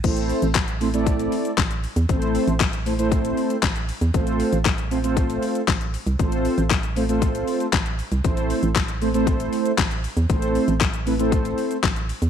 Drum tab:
CC |x---------------|----------------|----------------|----------------|
HH |xxoxxxoxxxoxxxox|xxoxxxoxxxoxxxox|xxoxxxoxxxoxxxox|xxoxxxoxxxoxxxox|
SH |xxxxxxxxxxxxxxxx|xxxxxxxxxxxxxxxx|xxxxxxxxxxxxxxxx|xxxxxxxxxxxxxxxx|
CP |----x-------x---|----x-------x---|----x-------x---|----x-------x---|
SD |----o-------o---|----o-------o---|----o-------o---|----o-------o---|
BD |o---o---o---o---|o---o---o---o---|o---o---o---o---|o---o---o---o---|

CC |----------------|----------------|
HH |xxoxxxoxxxoxxxox|xxoxxxoxxxoxxxox|
SH |xxxxxxxxxxxxxxxx|xxxxxxxxxxxxxxxx|
CP |----x-------x---|----x-------x---|
SD |----o-------o---|----o-------o---|
BD |o---o---o---o---|o---o---o---o---|